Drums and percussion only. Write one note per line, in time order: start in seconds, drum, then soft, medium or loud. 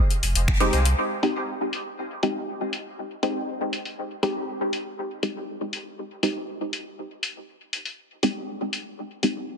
0.11 closed hi-hat soft
0.23 open hi-hat medium
0.35 closed hi-hat medium
0.48 finger snap medium
0.48 kick loud
0.60 closed hi-hat soft
0.73 open hi-hat medium
0.85 closed hi-hat medium
1.23 open hi-hat medium
1.73 open hi-hat medium
2.23 open hi-hat medium
2.73 open hi-hat medium
3.23 open hi-hat medium
3.73 open hi-hat medium
3.85 open hi-hat soft
4.23 open hi-hat medium
4.73 open hi-hat medium
5.23 open hi-hat medium
5.73 open hi-hat medium
6.23 open hi-hat medium
6.73 open hi-hat medium
7.23 open hi-hat medium
7.73 open hi-hat medium
7.85 open hi-hat soft
8.23 open hi-hat medium
8.73 open hi-hat medium
9.23 open hi-hat medium